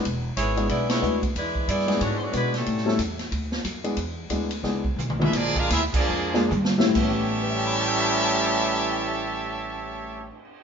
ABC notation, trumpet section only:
X:1
M:4/4
L:1/8
Q:"Swing" 1/4=178
K:Amix
V:1 name="Trumpet section"
z8 | z8 | z8 | z6 z [D^GBe] |
[_B,=F_Ad] [DA_B=f] [=CFAe] [B,FAd]3 z2 | [Gcea]8- | [Gcea]8 |]